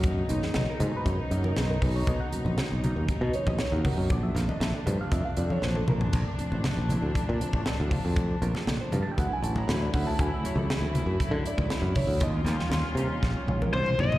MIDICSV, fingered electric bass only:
0, 0, Header, 1, 3, 480
1, 0, Start_track
1, 0, Tempo, 507185
1, 40, Time_signature, 4, 2, 24, 8
1, 13424, End_track
2, 0, Start_track
2, 0, Title_t, "Fingered electric bass"
2, 0, Program_c, 0, 33
2, 0, Note_on_c, 0, 42, 73
2, 209, Note_off_c, 0, 42, 0
2, 287, Note_on_c, 0, 35, 87
2, 381, Note_off_c, 0, 35, 0
2, 523, Note_on_c, 0, 35, 77
2, 619, Note_off_c, 0, 35, 0
2, 760, Note_on_c, 0, 44, 93
2, 857, Note_off_c, 0, 44, 0
2, 999, Note_on_c, 0, 42, 83
2, 1097, Note_off_c, 0, 42, 0
2, 1241, Note_on_c, 0, 42, 78
2, 1432, Note_off_c, 0, 42, 0
2, 1485, Note_on_c, 0, 35, 90
2, 1675, Note_off_c, 0, 35, 0
2, 1719, Note_on_c, 0, 35, 89
2, 1912, Note_off_c, 0, 35, 0
2, 1959, Note_on_c, 0, 35, 92
2, 2057, Note_off_c, 0, 35, 0
2, 2316, Note_on_c, 0, 34, 79
2, 2414, Note_off_c, 0, 34, 0
2, 2574, Note_on_c, 0, 35, 71
2, 2762, Note_off_c, 0, 35, 0
2, 2802, Note_on_c, 0, 39, 75
2, 2898, Note_off_c, 0, 39, 0
2, 3040, Note_on_c, 0, 47, 96
2, 3136, Note_off_c, 0, 47, 0
2, 3282, Note_on_c, 0, 34, 80
2, 3378, Note_off_c, 0, 34, 0
2, 3523, Note_on_c, 0, 39, 93
2, 3618, Note_off_c, 0, 39, 0
2, 3757, Note_on_c, 0, 42, 70
2, 3856, Note_off_c, 0, 42, 0
2, 3880, Note_on_c, 0, 34, 94
2, 4073, Note_off_c, 0, 34, 0
2, 4114, Note_on_c, 0, 34, 85
2, 4215, Note_off_c, 0, 34, 0
2, 4357, Note_on_c, 0, 34, 84
2, 4457, Note_off_c, 0, 34, 0
2, 4605, Note_on_c, 0, 43, 89
2, 4702, Note_off_c, 0, 43, 0
2, 4842, Note_on_c, 0, 41, 86
2, 4941, Note_off_c, 0, 41, 0
2, 5084, Note_on_c, 0, 41, 75
2, 5276, Note_off_c, 0, 41, 0
2, 5322, Note_on_c, 0, 34, 86
2, 5515, Note_off_c, 0, 34, 0
2, 5567, Note_on_c, 0, 34, 81
2, 5758, Note_off_c, 0, 34, 0
2, 5804, Note_on_c, 0, 34, 88
2, 5902, Note_off_c, 0, 34, 0
2, 6168, Note_on_c, 0, 33, 76
2, 6263, Note_off_c, 0, 33, 0
2, 6408, Note_on_c, 0, 34, 76
2, 6600, Note_off_c, 0, 34, 0
2, 6646, Note_on_c, 0, 38, 73
2, 6742, Note_off_c, 0, 38, 0
2, 6899, Note_on_c, 0, 46, 97
2, 6990, Note_off_c, 0, 46, 0
2, 7127, Note_on_c, 0, 33, 80
2, 7222, Note_off_c, 0, 33, 0
2, 7381, Note_on_c, 0, 38, 87
2, 7471, Note_off_c, 0, 38, 0
2, 7616, Note_on_c, 0, 41, 83
2, 7899, Note_off_c, 0, 41, 0
2, 7966, Note_on_c, 0, 34, 97
2, 8064, Note_off_c, 0, 34, 0
2, 8208, Note_on_c, 0, 34, 85
2, 8305, Note_off_c, 0, 34, 0
2, 8450, Note_on_c, 0, 43, 83
2, 8546, Note_off_c, 0, 43, 0
2, 8685, Note_on_c, 0, 38, 87
2, 8783, Note_off_c, 0, 38, 0
2, 8920, Note_on_c, 0, 33, 81
2, 9114, Note_off_c, 0, 33, 0
2, 9159, Note_on_c, 0, 38, 99
2, 9354, Note_off_c, 0, 38, 0
2, 9405, Note_on_c, 0, 38, 87
2, 9598, Note_off_c, 0, 38, 0
2, 9645, Note_on_c, 0, 38, 80
2, 9743, Note_off_c, 0, 38, 0
2, 9991, Note_on_c, 0, 37, 90
2, 10092, Note_off_c, 0, 37, 0
2, 10229, Note_on_c, 0, 38, 69
2, 10428, Note_off_c, 0, 38, 0
2, 10469, Note_on_c, 0, 42, 80
2, 10571, Note_off_c, 0, 42, 0
2, 10706, Note_on_c, 0, 50, 107
2, 10809, Note_off_c, 0, 50, 0
2, 10955, Note_on_c, 0, 37, 79
2, 11054, Note_off_c, 0, 37, 0
2, 11185, Note_on_c, 0, 42, 91
2, 11288, Note_off_c, 0, 42, 0
2, 11426, Note_on_c, 0, 38, 86
2, 11529, Note_off_c, 0, 38, 0
2, 11552, Note_on_c, 0, 39, 108
2, 11748, Note_off_c, 0, 39, 0
2, 11777, Note_on_c, 0, 39, 101
2, 11885, Note_off_c, 0, 39, 0
2, 12018, Note_on_c, 0, 39, 87
2, 12125, Note_off_c, 0, 39, 0
2, 12256, Note_on_c, 0, 48, 96
2, 12364, Note_off_c, 0, 48, 0
2, 12516, Note_on_c, 0, 34, 98
2, 12616, Note_off_c, 0, 34, 0
2, 12751, Note_on_c, 0, 34, 83
2, 12947, Note_off_c, 0, 34, 0
2, 12990, Note_on_c, 0, 36, 80
2, 13212, Note_off_c, 0, 36, 0
2, 13237, Note_on_c, 0, 34, 92
2, 13424, Note_off_c, 0, 34, 0
2, 13424, End_track
3, 0, Start_track
3, 0, Title_t, "Muted fingered electric bass strokes"
3, 888, Note_on_c, 9, 29, 35
3, 983, Note_off_c, 9, 29, 0
3, 1134, Note_on_c, 9, 29, 39
3, 1228, Note_off_c, 9, 29, 0
3, 2200, Note_on_c, 9, 29, 34
3, 2294, Note_off_c, 9, 29, 0
3, 4726, Note_on_c, 9, 29, 34
3, 4820, Note_off_c, 9, 29, 0
3, 4970, Note_on_c, 9, 29, 35
3, 5065, Note_off_c, 9, 29, 0
3, 6042, Note_on_c, 9, 29, 35
3, 6137, Note_off_c, 9, 29, 0
3, 8576, Note_on_c, 9, 29, 32
3, 8671, Note_off_c, 9, 29, 0
3, 8810, Note_on_c, 9, 29, 38
3, 8905, Note_off_c, 9, 29, 0
3, 9879, Note_on_c, 9, 29, 38
3, 9974, Note_off_c, 9, 29, 0
3, 12376, Note_on_c, 9, 29, 31
3, 12470, Note_off_c, 9, 29, 0
3, 12632, Note_on_c, 9, 29, 43
3, 12726, Note_off_c, 9, 29, 0
3, 13424, End_track
0, 0, End_of_file